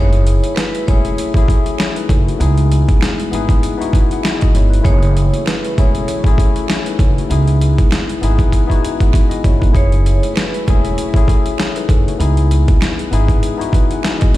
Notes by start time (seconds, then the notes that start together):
Already playing: F#1 C#3 F#3 A3 C#4 D#4 E4 G#4 B4 C#5
0.13 closed hi-hat
0.27 closed hi-hat
0.44 closed hi-hat
0.55 B4, finger snap, snare, closed hi-hat
0.75 closed hi-hat
0.87 E1 A3 C#4 E4 G#4 C#5, kick, closed hi-hat
1.05 closed hi-hat
1.18 closed hi-hat
1.34 A3 C#4 E4 G#4, kick, closed hi-hat
1.48 kick, closed hi-hat
1.66 closed hi-hat
1.78 E4 C#5, finger snap, snare, closed hi-hat
1.96 D#4 B4, closed hi-hat
2.09 F#1 C#4 A4, kick, closed hi-hat
2.28 A3 F#4, closed hi-hat
2.39 C#2 E3 G#3 B3 D#4 E4 G#4, closed hi-hat
2.58 closed hi-hat
2.72 closed hi-hat
2.89 kick, closed hi-hat
3.01 finger snap, snare, closed hi-hat
3.20 closed hi-hat
3.31 G#1 B3 D#4 E4 G#4, closed hi-hat
3.49 kick, closed hi-hat
3.63 closed hi-hat
3.77 B3 D#4 E4 F#4
3.82 closed hi-hat
3.92 G#5, kick, closed hi-hat
4.11 F#5, closed hi-hat
4.23 D#4 B4 E5, finger snap, snare, closed hi-hat
4.39 F#4 D#5, kick, closed hi-hat
4.54 G1 E4 C#5, closed hi-hat
4.70 D#4 B4, closed hi-hat
4.81 F#1 A3 C#4 E4 G#4 C#5, kick
4.85 F#3 A3, closed hi-hat
5.02 closed hi-hat
5.17 closed hi-hat
5.34 closed hi-hat
5.45 B4, finger snap, snare, closed hi-hat
5.65 closed hi-hat
5.77 E1 A3 C#4 E4 G#4 C#5, kick, closed hi-hat
5.95 closed hi-hat
6.08 closed hi-hat
6.24 A3 C#4 E4 G#4, kick, closed hi-hat
6.38 kick, closed hi-hat
6.56 closed hi-hat
6.68 E4 C#5, finger snap, snare, closed hi-hat
6.86 D#4 B4, closed hi-hat
6.98 F#1 C#4 A4, kick, closed hi-hat
7.18 A3 F#4, closed hi-hat
7.29 C#2 G#3 B3 D#4 E4 G#4, closed hi-hat
7.47 closed hi-hat
7.61 closed hi-hat
7.78 kick, closed hi-hat
7.91 finger snap, snare, closed hi-hat
8.09 closed hi-hat
8.21 G#1 B3 D#4 E4 G#4, closed hi-hat
8.39 kick, closed hi-hat
8.52 kick, closed hi-hat
8.67 B3 D#4 E4 F#4, kick
8.71 closed hi-hat
8.82 G#5, closed hi-hat
9.00 F#5, kick, closed hi-hat
9.13 D#4 B4 E5, finger snap, kick, closed hi-hat
9.30 F#4 D#5, closed hi-hat
9.44 G1 E4 C#5, kick, closed hi-hat
9.60 D#4 B4, kick, closed hi-hat
9.71 F#1 A3 C#4 E4 G#4, kick
9.75 C#3 F#3 A3 E4 C#5, closed hi-hat
9.92 closed hi-hat
10.06 closed hi-hat
10.23 closed hi-hat
10.34 B4, finger snap, snare, closed hi-hat
10.54 closed hi-hat
10.67 E1 A3 C#4 E4 G#4 C#5, kick, closed hi-hat
10.85 closed hi-hat
10.98 closed hi-hat
11.14 A3 C#4 E4 G#4, kick, closed hi-hat
11.28 kick, closed hi-hat
11.46 closed hi-hat
11.58 E4 C#5, finger snap, snare, closed hi-hat
11.76 D#4 B4, closed hi-hat
11.88 F#1 C#4 A4, kick, closed hi-hat
12.08 A3 F#4, closed hi-hat
12.18 C#2 E3 G#3 B3 D#4 E4 G#4, closed hi-hat
12.37 closed hi-hat
12.51 closed hi-hat
12.68 kick, closed hi-hat
12.81 finger snap, snare, closed hi-hat
12.99 closed hi-hat
13.11 G#1 B3 D#4 E4 G#4, closed hi-hat
13.29 kick, closed hi-hat
13.43 closed hi-hat
13.57 B3 D#4 E4 F#4
13.61 closed hi-hat
13.72 G#5, kick, closed hi-hat
13.91 F#5, closed hi-hat
14.03 D#4 B4 E5, finger snap, snare, closed hi-hat
14.19 F#4 D#5, kick, closed hi-hat
14.34 G1